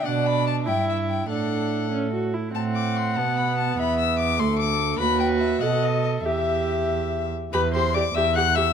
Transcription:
<<
  \new Staff \with { instrumentName = "Violin" } { \time 6/8 \key a \mixolydian \tempo 4. = 97 fis''8 b''8 a''8 g''8 e''8 g''8 | fis''4. r4. | \key e \minor a''8 d'''8 c'''8 a''8 b''8 a''8 | b''8 e'''8 d'''8 c'''8 d'''4 |
b''8 g''8 e''8 fis''8 dis''8 dis''8 | e''2~ e''8 r8 | b''8 c'''8 d'''8 e'''8 fis'''8 e'''8 | }
  \new Staff \with { instrumentName = "Violin" } { \time 6/8 \key a \mixolydian d''4. e''4. | a'2~ a'16 r8. | \key e \minor fis''2. | e''4. a'4. |
b'4. dis''4. | e''2~ e''16 r8. | b'8 c''8 d''8 e''8 fis''8 e''8 | }
  \new Staff \with { instrumentName = "Viola" } { \time 6/8 \key a \mixolydian d'4. e'4. | d'4. cis'8 fis'8 e'8 | \key e \minor c'4. b4.~ | b4. a4. |
fis'4. a'4. | g'2~ g'8 r8 | g'8 g'8 g'8 g'8 g'8 g'8 | }
  \new Staff \with { instrumentName = "Cello" } { \clef bass \time 6/8 \key a \mixolydian b,4. g,4. | a,2~ a,8 r8 | \key e \minor a,4. b,4. | e,4. d,4. |
dis,4. b,4. | e,2~ e,8 r8 | e,4. e,4. | }
>>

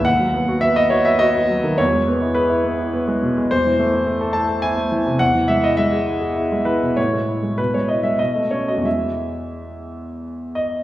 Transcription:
<<
  \new Staff \with { instrumentName = "Grand piano" } { \time 3/4 \key e \major \tempo 4 = 103 fis''4 e''16 dis''16 cis''16 e''16 dis''4 | cis''4 b'4. r8 | c''4. a''8 gis''4 | fis''8 e''16 dis''16 e''4. b'8 |
cis''4 b'16 cis''16 dis''16 e''16 dis''8 cis''16 dis''16 | e''2 r8 dis''8 | }
  \new Staff \with { instrumentName = "Grand piano" } { \time 3/4 \key e \major dis,16 fis16 b16 fis'16 b16 b'16 fis'16 b'16 fis'16 b16 fis16 dis16 | e,16 gis16 b16 e'16 gis'16 e'16 b16 e'16 b16 gis16 b,16 gis16 | e,16 e16 a16 e'16 a16 a'16 e'16 a'16 e'16 a16 e16 c16 | e,16 e16 gis16 e'16 gis16 gis'16 e'16 gis'16 e'16 gis16 e16 b,16 |
a,16 gis16 e'16 gis16 b,16 gis16 e'16 gis16 b,16 a16 cis'16 fis'16 | <e, e gis e'>2. | }
>>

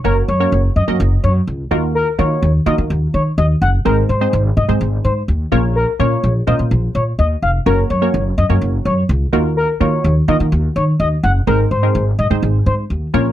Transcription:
<<
  \new Staff \with { instrumentName = "Analog synth lead" } { \time 4/4 \key ees \dorian \tempo 4 = 126 bes'8 des''8. r16 ees''16 r8. des''16 r4 r16 | bes'8 des''8. r16 ees''16 r8. des''16 r16 ees''16 r16 ges''16 r16 | bes'8 c''8. r16 ees''16 r8. c''16 r4 r16 | bes'8 des''8. r16 ees''16 r8. des''16 r16 ees''16 r16 f''16 r16 |
bes'8 des''8. r16 ees''16 r8. des''16 r4 r16 | bes'8 des''8. r16 ees''16 r8. des''16 r16 ees''16 r16 ges''16 r16 | bes'8 c''8. r16 ees''16 r8. c''16 r4 r16 | }
  \new Staff \with { instrumentName = "Synth stab" } { \time 4/4 \key ees \dorian <bes des' ges' bes' des''>8 r16 <bes des' ges' bes' des''>8. r16 <bes des' ges' bes' ees''>4. r16 <bes ees' f' ges' bes'>8~ | <bes ees' f' ges' bes'>16 r16 <bes ees' f' ges' bes'>8. r16 <bes ees' f' ges' bes'>4. r4 | <aes c' ees' aes' c''>8 r16 <aes c' ees' aes' c''>8. r16 <aes c' ees' aes' c''>4. r16 <bes des' f' bes' des''>8~ | <bes des' f' bes' des''>16 r16 <bes des' f' bes' des''>8. r16 <bes des' f' bes' c''>4. r4 |
<bes des' ges' bes' des''>8 r16 <bes des' ges' bes' des''>8. r16 <bes des' ges' bes' des''>4. r16 <bes ees' f' ges' bes'>8~ | <bes ees' f' ges' bes'>16 r16 <bes ees' f' ges' bes'>8. r16 <bes ees' f' ges' bes'>4. r4 | <aes c' ees' aes' c''>8 r16 <aes c' ees' aes' bes'>8. r16 <aes c' ees' aes' c''>4. r16 <bes des' f' bes' des''>8 | }
  \new Staff \with { instrumentName = "Upright bass" } { \clef bass \time 4/4 \key ees \dorian ges,,8 ges,8 ges,,8 ges,16 ges,16 ges,,8 ges,8 des,8 ees,8~ | ees,8 ees8 ees,8 ees16 ees16 ees,8 ees8 ees,8 ges,,8 | aes,,8 aes,8 aes,,8 aes,16 aes,16 aes,,8 aes,8 ees,8 bes,,8~ | bes,,8 bes,8 bes,,8 bes,16 bes,16 bes,,8 bes,8 ees,8 f,,8 |
ges,,8 ges,8 ges,,8 ges,16 ges,16 ges,,8 ges,8 des,8 ees,8~ | ees,8 ees8 ees,8 ees16 ees16 ees,8 ees8 ees,8 ges,,8 | aes,,8 aes,8 aes,,8 aes,16 aes,16 aes,,8 aes,8 ees,8 bes,,8 | }
>>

